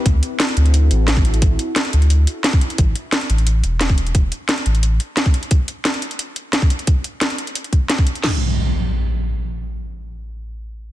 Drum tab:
CC |----------------|----------------|----------------|----------------|
HH |x-x-xxxxx-x-x-xx|x-x-xxxxx-x-x-xx|x-x-xxxxx-x-x-xx|x-x-xxxxx-x-x-xx|
SD |----o-------o---|----o-------o---|----o-------o---|----o-------o---|
BD |o------------o--|o------------o--|o------------o--|o------------o--|

CC |----------------|----------------|x---------------|----------------|
HH |x-x-xxxxx-x-x-xx|x-x-xxxxxxx-x-xx|----------------|----------------|
SD |----o-------o---|----o-------o---|o---------------|----------------|
BD |o------------o--|o---------o--o--|----------------|----------------|